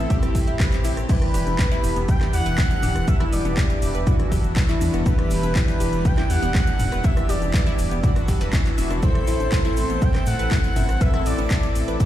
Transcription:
Already playing: A3 C4 E4 E5 E6
0.10 A2 C4 E4 G4, kick, closed hi-hat, shaker
0.22 cross-stick, closed hi-hat, shaker
0.35 A1, kick, snare, open hi-hat, shaker
0.48 A1 E4, closed hi-hat, shaker
0.60 B4, kick, snare, clap, closed hi-hat, shaker
0.72 clap, closed hi-hat, shaker
0.84 A1 E4, open hi-hat, shaker
0.97 A1, cross-stick, closed hi-hat, shaker
1.09 E3 G3 B3 D4 E4 G4 B4 E5 B5 E6, kick, closed hi-hat, crash, shaker
1.22 cross-stick, closed hi-hat
1.34 E1 G4, snare, open hi-hat, shaker
1.47 E1, closed hi-hat, high conga, shaker
1.59 B4, kick, snare, clap, closed hi-hat, shaker
1.72 E4, snare, closed hi-hat, shaker
1.84 E1, open hi-hat, shaker
1.96 E1 B3, closed hi-hat, shaker
2.08 G5 G6, kick, closed hi-hat, shaker
2.21 cross-stick, snare, clap, closed hi-hat, high conga
2.33 E2 E3 D4 E4 G4 F#5 F#6, open hi-hat, shaker
2.46 E1 B4, closed hi-hat, shaker
2.58 E4, kick, snare, clap, closed hi-hat, shaker
2.71 closed hi-hat, shaker
2.83 D1 G4, mid tom, open hi-hat, high conga, shaker
2.95 E1, cross-stick, closed hi-hat, shaker
3.08 E3 D4 E4 G4 B4 E5 E6, kick, closed hi-hat, shaker
3.20 E4, cross-stick, closed hi-hat
3.32 E1 D5 D6, snare, open hi-hat, shaker
3.45 E1 B3, closed hi-hat, high conga, shaker
3.57 kick, snare, clap, closed hi-hat, shaker
3.70 snare, closed hi-hat, shaker
3.82 E1, open hi-hat, shaker
3.95 E1 B4, closed hi-hat, shaker
4.07 E3 D4 E4 F#4, kick, closed hi-hat, mid tom, shaker
4.19 cross-stick, closed hi-hat, high conga
4.32 E1 G4, kick, snare, open hi-hat, shaker
4.44 E1, closed hi-hat, shaker
4.56 B4, kick, snare, clap, closed hi-hat, shaker
4.69 E4, clap, closed hi-hat, shaker
4.81 E2, open hi-hat, high conga, shaker
4.93 E1 B3, cross-stick, closed hi-hat, shaker
5.06 E3 D4 E4 G4 B4 B5, kick, closed hi-hat, shaker
5.19 cross-stick, closed hi-hat
5.31 E1, snare, open hi-hat, shaker
5.43 E1 B4, closed hi-hat, high conga, shaker
5.55 E4, kick, snare, clap, closed hi-hat, shaker
5.68 snare, closed hi-hat, shaker
5.80 E1 G4, open hi-hat, shaker
5.93 E1, closed hi-hat, shaker
6.05 B4 G5 G6, kick, closed hi-hat, shaker
6.18 E4, cross-stick, snare, clap, closed hi-hat, high conga
6.30 E2 E3 D4 E4 G4 F#5 F#6, open hi-hat, shaker
6.42 E1 B3, closed hi-hat, shaker
6.55 kick, snare, clap, closed hi-hat, shaker
6.67 closed hi-hat, shaker
6.79 D1, mid tom, open hi-hat, high conga, shaker
6.92 E1 B4, cross-stick, closed hi-hat, shaker
7.04 E3 D4 E4 G4 E5 E6, kick, closed hi-hat, shaker
7.17 cross-stick, closed hi-hat, shaker
7.29 E1 G4 D5 D6, snare, open hi-hat, shaker
7.42 E1, closed hi-hat, high conga, shaker
7.54 B4, kick, snare, clap, closed hi-hat, shaker
7.67 E4, snare, closed hi-hat, shaker
7.78 E1, open hi-hat, shaker
7.91 E1 B3, closed hi-hat, shaker
8.03 E3 D4 E4 F#4, kick, closed hi-hat, mid tom, shaker
8.16 cross-stick, closed hi-hat, high conga, shaker
8.28 E1 G4, kick, snare, open hi-hat, shaker
8.41 E1 B4, snare, closed hi-hat, shaker
8.53 E3, kick, snare, clap, closed hi-hat, shaker
8.66 clap, closed hi-hat, shaker
8.78 E1 E5, open hi-hat, high conga, shaker
8.90 E1 D4, cross-stick, closed hi-hat, shaker
9.02 A2 A3 C4 E4 A4 C5 C6, kick, closed hi-hat, shaker
9.15 cross-stick, closed hi-hat
9.27 A1 E4, snare, open hi-hat, shaker
9.40 A1, closed hi-hat, high conga, shaker
9.52 B4, kick, snare, clap, closed hi-hat, shaker
9.65 E4, snare, closed hi-hat, shaker
9.77 A1, open hi-hat, shaker
9.90 A1 B3, closed hi-hat, shaker
10.02 G5 G6, kick, closed hi-hat, shaker
10.15 cross-stick, snare, clap, closed hi-hat, high conga
10.26 A2 C4 E4 A4 F#5 F#6, open hi-hat, shaker
10.39 A1 B4, closed hi-hat, shaker
10.51 E4, kick, snare, clap, closed hi-hat, shaker
10.64 closed hi-hat, shaker
10.76 G1 E4, mid tom, open hi-hat, high conga, shaker
10.89 A1, cross-stick, closed hi-hat, shaker
11.01 A2 C4 E4 A4 B4 E5 E6, kick, closed hi-hat, shaker
11.14 E4, cross-stick, closed hi-hat
11.26 A1 D5 D6, snare, open hi-hat, shaker
11.38 A1 B3, closed hi-hat, high conga, shaker
11.50 kick, snare, clap, closed hi-hat, shaker
11.63 snare, closed hi-hat, shaker
11.75 A1, open hi-hat, shaker
11.88 A1 B4, closed hi-hat, shaker
12.00 A2 C4 E4 G4, kick, closed hi-hat, mid tom, shaker

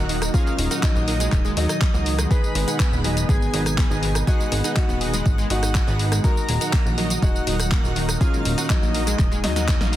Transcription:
Already playing: D#1 A#2 D#3 F#3 D#4 F#4 A#4 D#5 F#5
0.09 D#3 D#4, open hi-hat
0.22 cross-stick, closed hi-hat, tambourine
0.34 F#3 C#4 D#4 F4 G#4 A#4 D#5 F5 G#5, kick, closed hi-hat, tambourine
0.46 G#3 G#4, tambourine
0.58 D#1, open hi-hat
0.71 D#4 F#4 A#4 D#5 F#5, closed hi-hat, tambourine
0.83 F#3 D#4 D#5, kick, clap, closed hi-hat, tambourine
0.95 A#1 A#3 A#4, tambourine
1.08 D#4 F#4 A#4 D#5, open hi-hat
1.20 G#3 G#4, closed hi-hat, tambourine
1.32 D#1, kick, clap, closed hi-hat, tambourine
1.45 G#3 G#4, tambourine
1.57 D#2 F#3 D#4 F#4 A#4 D#5, open hi-hat
1.69 D#4 D#5, cross-stick, closed hi-hat, tambourine
1.81 kick, clap, closed hi-hat, tambourine
1.94 C#2 A#3 D#4 F#4 A#4 D#5, tambourine
2.06 open hi-hat
2.19 G#3 G#4, cross-stick, closed hi-hat, tambourine
2.31 B2 G#3 D#4 G#4 B4 D#5 B5, kick, closed hi-hat, tambourine
2.44 tambourine
2.55 G#1 G#3 G#4, open hi-hat
2.68 D#4 G#4 B4 F#5, closed hi-hat, tambourine
2.80 B3 B4, kick, clap, closed hi-hat, tambourine
2.92 D#1, tambourine
3.04 F#3 D#4 F#4 G#4 B4 D#5, open hi-hat
3.17 closed hi-hat, tambourine
3.29 G#1 G#3 B3 G#4 G#5, kick, closed hi-hat, tambourine
3.42 tambourine
3.53 G#1 F#3 D#4 F#4 G#4 B4 D#5, open hi-hat
3.66 cross-stick, closed hi-hat, tambourine
3.78 B3 B4, kick, clap, closed hi-hat, tambourine
3.90 G#1 D#4 G#4 B4 D#5, tambourine
4.03 D#3 D#4, open hi-hat
4.15 cross-stick, closed hi-hat, tambourine
4.27 D#4 F#4 G#4 B4 D#5 F#5 G#5, kick, closed hi-hat, tambourine
4.40 G#3 G#4, tambourine
4.52 G#1, open hi-hat
4.64 D#4 G#4 B4 D#5 F#5, closed hi-hat, tambourine
4.76 D#4 F#4 F#5, kick, clap, closed hi-hat, tambourine
4.89 D#1 B3 B4, tambourine
5.01 D#4 G#4 B4 D#5, open hi-hat
5.14 G#3 G#4, closed hi-hat, tambourine
5.26 G#1, kick, closed hi-hat, tambourine
5.38 G#3 G#4, tambourine
5.50 G#1 D#4 F#4 G#4 B4 D#5 F#5, open hi-hat
5.63 D#4 D#5, cross-stick, closed hi-hat, tambourine
5.75 kick, clap, closed hi-hat, tambourine
5.87 G#1 B3 D#4 G#4 B4 D#5, tambourine
5.99 open hi-hat
6.12 G#3 G#4, cross-stick, closed hi-hat, tambourine
6.24 A#2 D#3 F#3 G#3 D#4 F#4 G#4 A#4 D#5 A#5, kick, closed hi-hat, tambourine
6.37 tambourine
6.49 D#1 G#3 G#4, open hi-hat
6.61 D#4 F#4 A#4 F#5, closed hi-hat, tambourine
6.73 A#3 A#4, kick, clap, closed hi-hat, tambourine
6.86 A#1, tambourine
6.98 F#3 D#4 F#4 A#4 D#5, open hi-hat
7.10 closed hi-hat, tambourine
7.22 D#1 G#3 D#4 F#4 G#4 F#5, kick, closed hi-hat, tambourine
7.36 tambourine
7.47 D#1 F#3 D#4 F#4 A#4 D#5, open hi-hat
7.60 cross-stick, closed hi-hat, tambourine
7.71 A#3 A#4, kick, clap, closed hi-hat, tambourine
7.84 D#1 D#4 F#4 A#4 D#5, tambourine
7.96 D#3 D#4, open hi-hat
8.09 cross-stick, closed hi-hat, tambourine
8.21 F#3 C#4 D#4 F4 G#4 A#4 D#5 F5 G#5, kick, closed hi-hat, tambourine
8.33 G#3 G#4, tambourine
8.45 D#1, open hi-hat
8.58 D#4 F#4 A#4 D#5 F#5, closed hi-hat, tambourine
8.70 F#3 D#4 D#5, kick, clap, closed hi-hat, tambourine
8.82 A#1 A#3 A#4, tambourine
8.94 D#4 F#4 A#4 D#5, open hi-hat
9.07 G#3 G#4, closed hi-hat, tambourine
9.19 D#1, kick, clap, closed hi-hat, tambourine
9.32 G#3 G#4, tambourine
9.44 D#2 F#3 D#4 D#5, snare, open hi-hat
9.56 D#4 F#4 A#4 D#5 F#5, snare, closed hi-hat, tambourine
9.68 kick, snare, clap, closed hi-hat, tambourine
9.81 A#1 A#3 D#4 F#4 A#4 F5, snare, tambourine
9.93 open hi-hat

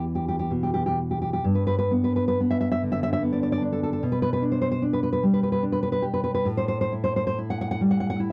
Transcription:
Already playing: E2 E3
0.15 G4
0.28 G4
0.39 G4
0.50 B2
0.63 G4
0.74 G4
0.86 G4
1.11 G4
1.22 G4
1.33 G4
1.44 G2
1.55 B4
1.67 B4
1.79 B4
1.91 B3
2.04 B4
2.16 B4
2.28 B4
2.40 B3
2.51 E5
2.61 E5
2.72 E5
2.83 D3
2.92 E5
3.03 E5
3.13 E5
3.23 B3
3.33 D5
3.43 D5
3.52 D5
3.62 D4
3.72 A4
3.83 A4
3.93 A4
4.03 B2
4.12 B4
4.22 B4
4.33 B4
4.42 D4
4.52 C5
4.62 C5
4.72 C5
4.82 D4
4.93 B4
5.03 B4
5.13 B4
5.23 G3
5.34 B4
5.43 B4
5.52 B4
5.63 D4
5.72 B4
5.83 B4
5.92 B4
6.02 G4
6.14 B4
6.24 B4
6.34 B4
6.45 A2
6.57 C5
6.68 C5
6.81 C5
6.92 E4
7.04 C5
7.16 C5
7.27 C5
7.38 E4
7.50 F#5
7.61 F#5
7.71 F#5
7.81 G3
7.91 F#5
8.00 F#5
8.10 F#5
8.20 E4

